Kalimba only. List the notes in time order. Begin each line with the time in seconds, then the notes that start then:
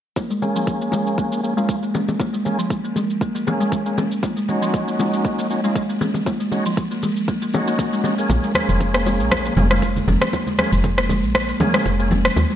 0.17 A#3
0.30 G#3
0.56 F3
0.81 A#3
0.93 G#3
1.18 A#3
1.32 A#3
1.57 G#3
1.83 A#3
1.94 C#4
2.20 A#3
2.33 G#3
2.59 F3
2.84 A#3
2.96 G#3
3.21 A#3
3.35 A#3
3.60 G#3
3.86 A#3
3.98 C#4
4.23 A#3
4.37 G#3
4.62 F3
4.88 A#3
4.99 G#3
5.25 A#3
5.39 A#3
5.64 G#3
5.89 A#3
6.01 C#4
6.27 A#3
6.40 G#3
6.66 F3
6.91 A#3
7.03 G#3
7.28 A#3
7.42 A#3
7.68 A#3
7.79 D#4
7.93 G#3
8.05 C#4
8.30 A#3
8.44 G#3
8.69 F3
8.95 A#3
9.06 G#3
9.32 A#3
9.45 A#3
9.71 G#3
9.96 A#3
10.08 C#4
10.33 A#3
10.47 G#3
10.72 F3
10.98 A#3
11.10 G#3
11.35 A#3
11.49 A#3
11.74 G#3
12.00 A#3
12.11 C#4
12.37 A#3
12.50 G#3